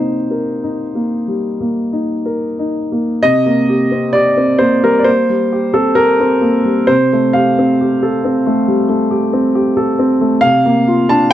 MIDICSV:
0, 0, Header, 1, 2, 480
1, 0, Start_track
1, 0, Tempo, 978793
1, 1578, Tempo, 918836
1, 1579, Time_signature, 4, 2, 24, 8
1, 3978, Tempo, 878477
1, 5900, End_track
2, 0, Start_track
2, 0, Title_t, "Grand piano"
2, 0, Program_c, 0, 0
2, 0, Control_c, 0, 64, 127
2, 0, Note_on_c, 0, 48, 42
2, 0, Note_on_c, 0, 58, 32
2, 0, Note_on_c, 0, 63, 32
2, 0, Note_on_c, 0, 72, 61
2, 76, Note_off_c, 0, 58, 0
2, 150, Note_on_c, 0, 70, 33
2, 241, Note_off_c, 0, 63, 0
2, 312, Note_on_c, 0, 63, 34
2, 403, Note_off_c, 0, 70, 0
2, 466, Note_on_c, 0, 58, 33
2, 563, Note_off_c, 0, 63, 0
2, 600, Note_off_c, 0, 48, 0
2, 625, Note_on_c, 0, 55, 36
2, 720, Note_off_c, 0, 58, 0
2, 787, Note_on_c, 0, 58, 34
2, 879, Note_off_c, 0, 55, 0
2, 945, Note_on_c, 0, 63, 33
2, 1040, Note_off_c, 0, 58, 0
2, 1096, Note_off_c, 0, 72, 0
2, 1106, Note_on_c, 0, 70, 33
2, 1198, Note_off_c, 0, 63, 0
2, 1270, Note_on_c, 0, 63, 34
2, 1361, Note_off_c, 0, 70, 0
2, 1432, Note_on_c, 0, 58, 33
2, 1522, Note_off_c, 0, 63, 0
2, 1582, Note_on_c, 0, 75, 97
2, 1583, Note_off_c, 0, 58, 0
2, 1587, Note_on_c, 0, 48, 58
2, 1589, Control_c, 0, 64, 0
2, 1666, Control_c, 0, 64, 127
2, 1705, Note_on_c, 0, 58, 45
2, 1826, Note_on_c, 0, 67, 45
2, 1894, Note_off_c, 0, 58, 0
2, 1941, Note_on_c, 0, 60, 41
2, 2015, Note_off_c, 0, 67, 0
2, 2053, Note_on_c, 0, 74, 84
2, 2058, Note_on_c, 0, 67, 48
2, 2061, Note_off_c, 0, 75, 0
2, 2133, Note_off_c, 0, 60, 0
2, 2180, Note_on_c, 0, 60, 45
2, 2251, Note_off_c, 0, 67, 0
2, 2292, Note_on_c, 0, 72, 81
2, 2297, Note_off_c, 0, 74, 0
2, 2299, Note_on_c, 0, 58, 46
2, 2373, Note_off_c, 0, 60, 0
2, 2417, Note_off_c, 0, 72, 0
2, 2424, Note_on_c, 0, 70, 78
2, 2425, Note_on_c, 0, 55, 47
2, 2492, Note_off_c, 0, 58, 0
2, 2504, Note_on_c, 0, 74, 62
2, 2505, Note_off_c, 0, 70, 0
2, 2524, Note_off_c, 0, 48, 0
2, 2532, Note_on_c, 0, 72, 86
2, 2539, Note_on_c, 0, 58, 45
2, 2541, Note_off_c, 0, 74, 0
2, 2548, Control_c, 0, 64, 0
2, 2614, Note_off_c, 0, 55, 0
2, 2647, Control_c, 0, 64, 127
2, 2661, Note_on_c, 0, 55, 47
2, 2730, Note_off_c, 0, 58, 0
2, 2783, Note_on_c, 0, 67, 48
2, 2849, Note_off_c, 0, 55, 0
2, 2891, Note_off_c, 0, 72, 0
2, 2894, Note_on_c, 0, 69, 72
2, 2896, Note_on_c, 0, 60, 43
2, 2968, Note_off_c, 0, 67, 0
2, 3006, Note_on_c, 0, 70, 85
2, 3011, Note_on_c, 0, 67, 45
2, 3012, Note_off_c, 0, 69, 0
2, 3084, Note_off_c, 0, 60, 0
2, 3135, Note_on_c, 0, 60, 46
2, 3201, Note_off_c, 0, 67, 0
2, 3247, Note_on_c, 0, 58, 45
2, 3324, Note_off_c, 0, 60, 0
2, 3367, Note_on_c, 0, 55, 42
2, 3445, Note_off_c, 0, 58, 0
2, 3486, Note_on_c, 0, 72, 87
2, 3492, Note_on_c, 0, 48, 57
2, 3493, Note_off_c, 0, 70, 0
2, 3494, Note_off_c, 0, 55, 0
2, 3507, Control_c, 0, 64, 0
2, 3599, Control_c, 0, 64, 127
2, 3620, Note_on_c, 0, 57, 43
2, 3728, Note_on_c, 0, 77, 77
2, 3738, Note_on_c, 0, 67, 43
2, 3739, Note_off_c, 0, 72, 0
2, 3815, Note_off_c, 0, 57, 0
2, 3859, Note_on_c, 0, 60, 46
2, 3929, Note_off_c, 0, 67, 0
2, 3977, Note_on_c, 0, 67, 45
2, 4048, Note_off_c, 0, 60, 0
2, 4095, Note_on_c, 0, 69, 48
2, 4168, Note_off_c, 0, 67, 0
2, 4215, Note_on_c, 0, 60, 47
2, 4286, Note_off_c, 0, 69, 0
2, 4335, Note_on_c, 0, 57, 46
2, 4405, Note_off_c, 0, 60, 0
2, 4429, Note_off_c, 0, 48, 0
2, 4449, Note_on_c, 0, 55, 48
2, 4525, Note_off_c, 0, 57, 0
2, 4568, Note_on_c, 0, 57, 47
2, 4642, Note_off_c, 0, 55, 0
2, 4685, Note_on_c, 0, 67, 46
2, 4761, Note_off_c, 0, 57, 0
2, 4808, Note_on_c, 0, 60, 48
2, 4881, Note_off_c, 0, 67, 0
2, 4928, Note_on_c, 0, 67, 48
2, 5003, Note_off_c, 0, 60, 0
2, 5046, Note_on_c, 0, 69, 54
2, 5123, Note_off_c, 0, 67, 0
2, 5168, Note_on_c, 0, 60, 52
2, 5243, Note_off_c, 0, 69, 0
2, 5289, Note_on_c, 0, 57, 44
2, 5365, Note_off_c, 0, 60, 0
2, 5389, Note_off_c, 0, 77, 0
2, 5397, Note_on_c, 0, 77, 98
2, 5406, Note_on_c, 0, 48, 61
2, 5413, Note_off_c, 0, 57, 0
2, 5425, Control_c, 0, 64, 0
2, 5503, Control_c, 0, 64, 127
2, 5532, Note_on_c, 0, 58, 49
2, 5652, Note_on_c, 0, 65, 51
2, 5729, Note_off_c, 0, 58, 0
2, 5770, Note_off_c, 0, 77, 0
2, 5770, Note_on_c, 0, 62, 47
2, 5771, Note_on_c, 0, 81, 89
2, 5848, Note_off_c, 0, 65, 0
2, 5895, Note_off_c, 0, 81, 0
2, 5900, Note_off_c, 0, 48, 0
2, 5900, Note_off_c, 0, 62, 0
2, 5900, End_track
0, 0, End_of_file